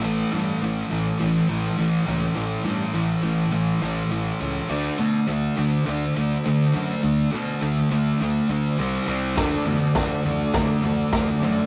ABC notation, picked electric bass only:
X:1
M:4/4
L:1/8
Q:1/4=103
K:D
V:1 name="Picked electric bass" clef=bass
A,,, G,, A,,, A,,, A,,, A,,, A,,, C,, | A,,, G,, A,,, A,,, A,,, A,,, A,,, C,, | D,, B,, D,, D,, D,, D,, D,, F,, | D,, B,, D,, D,, D,, D,, =C,, C,, |
D,, B,, D,, D,, D,, D,, D,, F,, |]